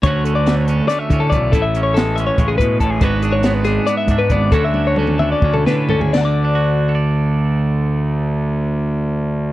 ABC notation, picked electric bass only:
X:1
M:7/8
L:1/8
Q:1/4=136
K:Dlyd
V:1 name="Picked electric bass" clef=bass
D,,4 z D, B,,, | A,,,4 A,,, A,, A,,, | G,,,4 z G,, G,,, | D,,4 D,, D, D,, |
D,,6- D,,- | D,,6- D,, |]